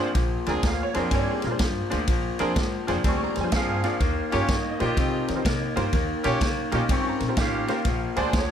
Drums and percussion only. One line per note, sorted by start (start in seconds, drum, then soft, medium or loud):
0.15 kick medium
0.15 snare soft
0.15 ride medium
0.46 snare soft
0.46 ride medium
0.63 kick medium
0.63 snare loud
0.63 ride medium
0.94 snare soft
0.94 ride medium
1.11 kick medium
1.11 snare soft
1.11 ride medium
1.42 snare soft
1.42 ride medium
1.59 kick medium
1.59 snare loud
1.59 ride medium
1.91 snare soft
1.91 ride medium
2.07 kick medium
2.07 snare soft
2.07 ride medium
2.39 snare soft
2.39 ride medium
2.56 kick loud
2.56 snare loud
2.56 ride medium
2.88 snare soft
2.88 ride medium
3.04 kick medium
3.04 snare soft
3.04 ride medium
3.35 snare soft
3.35 ride medium
3.52 kick medium
3.52 snare loud
3.52 ride medium
3.83 snare soft
3.83 ride medium
4.00 kick medium
4.00 snare soft
4.00 ride medium
4.32 snare soft
4.32 ride medium
4.48 kick medium
4.48 snare loud
4.48 ride medium
4.80 snare soft
4.80 ride medium
4.97 kick medium
4.97 snare soft
4.97 ride medium
5.28 snare soft
5.28 ride medium
5.45 kick medium
5.45 snare loud
5.45 ride medium
5.77 snare soft
5.77 ride medium
5.93 kick medium
5.93 snare soft
5.93 ride medium
6.24 snare soft
6.24 ride medium
6.41 kick medium
6.41 snare loud
6.41 ride medium
6.72 snare soft
6.72 ride medium
6.89 kick medium
6.89 snare soft
6.89 ride medium
7.20 snare soft
7.20 ride medium
7.37 kick medium
7.37 snare loud
7.37 ride medium
7.68 snare soft
7.68 ride medium
7.85 kick medium
7.85 snare soft
7.85 ride medium
8.16 snare soft
8.16 ride medium
8.33 kick medium
8.33 snare loud
8.33 ride medium